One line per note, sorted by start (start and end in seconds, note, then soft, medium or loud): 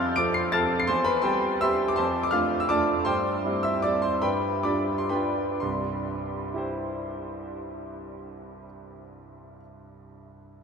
0.00 0.17 F2 medium
0.00 0.15 F5 medium
0.00 0.15 C6 medium
0.00 0.17 F6 loud
0.16 0.50 F3 medium
0.16 0.50 C4 medium
0.16 0.50 A4 medium
0.16 0.34 D6 loud
0.16 0.35 D7 loud
0.34 0.52 C6 medium
0.34 0.53 C7 loud
0.52 0.86 F3 medium
0.52 0.86 C4 medium
0.52 0.87 A4 medium
0.52 0.79 A5 medium
0.52 0.79 F6 medium
0.52 0.80 A6 loud
0.80 0.89 C7 loud
0.87 1.24 E2 medium
0.87 1.05 C5 medium
0.87 1.06 C6 loud
1.04 1.23 B4 medium
1.04 1.24 B5 loud
1.22 1.58 G3 medium
1.22 1.59 C4 medium
1.22 1.59 G4 medium
1.22 1.59 C5 medium
1.22 1.59 G5 medium
1.22 1.60 C6 loud
1.61 1.95 G3 medium
1.61 1.95 C4 medium
1.61 1.95 G4 medium
1.61 1.88 E5 medium
1.61 1.88 C6 medium
1.61 1.89 E6 loud
1.88 1.98 D6 loud
1.96 2.32 F2 medium
1.96 2.22 C5 medium
1.96 2.22 A5 medium
1.96 2.23 C6 loud
2.23 2.30 D6 loud
2.31 2.66 A3 medium
2.31 2.67 D4 medium
2.31 2.67 F4 medium
2.31 2.59 F5 medium
2.31 2.58 D6 medium
2.31 2.60 F6 loud
2.60 2.70 E6 medium
2.69 3.03 A3 medium
2.69 3.03 D4 medium
2.69 3.03 F4 medium
2.69 3.04 D5 medium
2.69 3.04 A5 medium
2.69 3.06 D6 loud
3.05 3.43 G2 medium
3.05 3.59 C5 medium
3.05 3.60 G5 medium
3.05 3.63 C6 loud
3.44 3.80 G3 soft
3.44 3.81 C4 medium
3.44 3.81 E4 medium
3.63 3.83 E5 medium
3.63 3.84 E6 medium
3.82 4.19 G3 medium
3.82 4.19 C4 soft
3.82 4.19 E4 medium
3.82 4.02 D5 medium
3.82 4.03 D6 loud
4.02 4.21 C5 medium
4.02 4.22 C6 medium
4.22 4.63 G2 medium
4.22 4.61 B4 medium
4.22 4.61 G5 medium
4.22 4.63 B5 medium
4.63 5.07 G3 soft
4.63 5.07 D4 soft
4.63 5.07 F4 soft
4.63 4.96 D5 medium
4.63 4.96 B5 medium
4.63 4.98 D6 medium
4.98 5.10 C6 medium
5.09 5.57 G3 soft
5.09 5.57 D4 soft
5.09 5.57 F4 medium
5.09 5.57 B4 medium
5.09 5.57 G5 medium
5.09 5.60 B5 medium
5.60 8.66 C2 medium
5.60 8.65 G2 medium
5.60 8.63 C6 medium
6.54 9.57 E4 medium
6.54 9.59 G4 medium
6.54 9.61 C5 medium